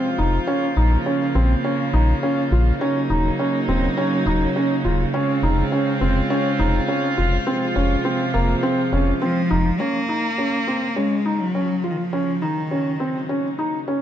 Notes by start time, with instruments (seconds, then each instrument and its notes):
Already playing: string section C3 F3 G#3 F4
0.18 analog synth bass F1, felt piano D#4
0.47 string section C#3 A#3, felt piano C#4
0.77 analog synth bass A#1, felt piano D#4
1.06 felt piano C#4
1.35 analog synth bass A#1, felt piano C4
1.64 felt piano C#4
1.93 analog synth bass A#1, felt piano D#4
2.23 felt piano C#4
2.51 analog synth bass A#1, felt piano F4
2.80 string section C#3 F#3 A#3 D#4, felt piano C#4
3.10 analog synth bass D#1, felt piano D#4
3.39 felt piano C#4
3.68 analog synth bass D#1, felt piano C4
3.97 felt piano C#4
4.26 analog synth bass D#1, felt piano D#4
4.56 felt piano C#4
4.84 analog synth bass D#1, felt piano F4
5.13 string section G#3 C4 F4, felt piano C#4
5.42 analog synth bass F1, felt piano D#4
5.72 felt piano C#4
6.01 analog synth bass F1, felt piano C4
6.30 felt piano C#4
6.59 analog synth bass F1, felt piano D#4
6.88 felt piano C#4
7.18 analog synth bass F1, felt piano F4
7.47 string section C3 F3 G#3, felt piano C4
7.76 analog synth bass F1, felt piano C#4
8.05 felt piano C4
8.34 analog synth bass F1, felt piano A#3
8.63 felt piano C4
8.92 analog synth bass F1, felt piano C#4
9.22 cello F3, felt piano C4
9.50 analog synth bass F1, felt piano D#4
9.80 string section C#3 A#3 F4, cello A#3, felt piano C#4
10.09 felt piano D#4
10.38 felt piano C#4
10.67 felt piano C4
10.96 cello G#3, felt piano C#4
11.25 felt piano D#4
11.40 cello F#3
11.55 felt piano C#4
11.84 cello F3, felt piano F4
11.91 cello D#3
11.98 cello F3
12.13 string section F#3 D#4, felt piano C#4
12.42 cello D#3, felt piano D#4
12.71 felt piano C#4
13.00 felt piano C4
13.29 felt piano C#4
13.58 felt piano D#4
13.88 felt piano C#4